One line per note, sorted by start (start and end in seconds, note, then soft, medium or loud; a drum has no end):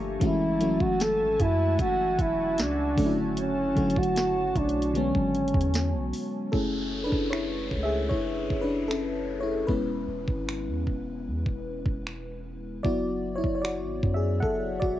0.00 0.17 G1 medium
0.00 0.24 F3 medium
0.00 0.21 A3 medium
0.00 0.23 A#3 medium
0.00 0.23 D4 medium
0.00 0.23 G4 medium
0.00 2.94 A5 medium
0.20 0.78 F#1 loud
0.20 0.49 E3 medium
0.20 0.49 G#3 medium
0.20 0.50 A3 medium
0.20 0.50 C#4 medium
0.20 0.84 E4 loud
0.20 6.49 F#4 medium
0.20 0.51 F#4 medium
0.20 2.95 E5 medium
0.20 2.95 G#5 medium
0.20 kick loud
0.20 closed hi-hat medium
0.59 1.73 E3 medium
0.59 1.74 F#3 medium
0.59 1.74 A3 medium
0.59 1.74 C#4 medium
0.59 1.75 F#4 medium
0.59 closed hi-hat medium
0.80 1.22 F#1 loud
0.80 1.03 F#4 loud
0.80 kick medium
1.00 1.43 A4 loud
1.00 snare loud
1.00 closed hi-hat medium
1.20 1.39 G#1 loud
1.40 1.78 F#2 loud
1.40 1.80 E4 loud
1.40 kick loud
1.40 closed hi-hat medium
1.79 2.17 F#1 loud
1.79 2.23 F#4 loud
1.79 kick medium
1.79 closed hi-hat medium
2.19 2.60 E1 loud
2.19 2.62 E4 medium
2.19 kick loud
2.19 closed hi-hat medium
2.58 2.96 C#2 medium
2.58 3.19 D4 medium
2.58 snare loud
2.58 closed hi-hat medium
2.96 3.73 F#1 loud
2.96 3.60 D3 medium
2.96 3.60 F#3 medium
2.96 3.61 A3 medium
2.96 3.61 C#4 medium
2.96 3.05 D4 medium
2.96 6.49 C#5 medium
2.96 4.93 A5 medium
2.96 6.49 C#6 medium
2.96 kick loud
2.96 open hi-hat medium
3.06 3.65 E4 medium
3.37 4.00 C#4 loud
3.37 closed hi-hat medium
3.75 4.52 F#1 loud
3.75 4.89 D3 medium
3.75 4.89 F#3 medium
3.75 4.90 A3 medium
3.75 4.91 F#4 medium
3.75 4.90 C#5 medium
3.75 kick medium
3.75 closed hi-hat soft
3.90 closed hi-hat medium
3.96 4.59 F#4 loud
3.96 kick medium
4.03 closed hi-hat medium
4.16 snare loud
4.16 closed hi-hat medium
4.56 5.12 B1 loud
4.56 4.99 D4 medium
4.56 kick medium
4.56 closed hi-hat medium
4.69 closed hi-hat medium
4.82 closed hi-hat medium
4.93 6.20 D3 medium
4.93 6.21 F#3 medium
4.93 6.21 G#3 medium
4.93 6.22 B3 medium
4.93 6.22 C#4 medium
4.93 6.14 C#4 medium
4.93 closed hi-hat medium
5.15 5.53 G#1 loud
5.15 kick medium
5.35 closed hi-hat soft
5.48 closed hi-hat medium
5.54 5.95 E2 loud
5.54 kick loud
5.61 closed hi-hat medium
5.74 snare loud
5.74 closed hi-hat medium
5.94 6.13 B1 loud
6.13 open hi-hat medium
6.52 7.10 F#1 loud
6.52 7.67 A3 medium
6.52 7.02 C#4 medium
6.52 7.31 E4 medium
6.52 7.67 G#4 medium
6.52 7.07 A4 medium
6.52 kick loud
6.52 downlifter medium
7.04 7.30 D4 medium
7.04 7.32 B4 medium
7.12 7.69 F#1 loud
7.12 kick medium
7.30 7.81 E4 medium
7.30 7.80 C#5 medium
7.30 finger snap loud
7.71 8.09 C#2 loud
7.71 kick medium
7.83 7.97 G#4 medium
7.83 7.95 E5 loud
8.09 8.49 F#1 loud
8.09 8.60 E4 medium
8.09 8.64 C#5 medium
8.09 kick medium
8.50 9.65 F#1 loud
8.50 kick medium
8.62 8.88 D4 medium
8.62 8.87 B4 medium
8.88 9.39 C#4 medium
8.88 9.43 A4 medium
8.88 finger snap loud
9.41 9.67 E4 medium
9.41 9.69 C#5 medium
9.67 10.07 E1 loud
9.67 10.83 G#3 medium
9.67 10.83 B3 medium
9.67 10.83 C#4 medium
9.67 11.23 E4 medium
9.67 11.22 B4 medium
9.67 kick loud
10.08 10.27 E1 loud
10.28 10.69 G#1 loud
10.28 kick medium
10.49 finger snap loud
10.68 10.86 E2 medium
10.87 11.28 E1 loud
10.87 kick medium
11.27 11.46 E2 loud
11.46 11.84 E1 medium
11.46 kick medium
11.86 12.81 E1 loud
11.86 kick loud
12.07 finger snap loud
12.83 13.41 F#1 loud
12.83 13.37 F#3 medium
12.83 13.37 B3 medium
12.83 13.37 E4 medium
12.83 13.34 F#4 medium
12.83 13.33 D5 loud
12.83 kick loud
13.36 13.56 E4 medium
13.36 13.54 C#5 medium
13.44 13.85 F#1 loud
13.44 kick medium
13.55 13.63 C#5 medium
13.62 14.13 F#4 medium
13.62 14.17 D5 medium
13.62 finger snap loud
13.83 14.02 G#1 medium
14.03 14.41 F#2 loud
14.03 kick medium
14.14 14.41 G#4 medium
14.14 14.40 E5 medium
14.40 14.80 F#1 loud
14.40 14.79 A4 medium
14.40 14.82 F#5 loud
14.40 kick medium
14.80 14.99 E1 loud
14.80 14.99 F#4 medium
14.80 14.99 D5 loud
14.80 kick medium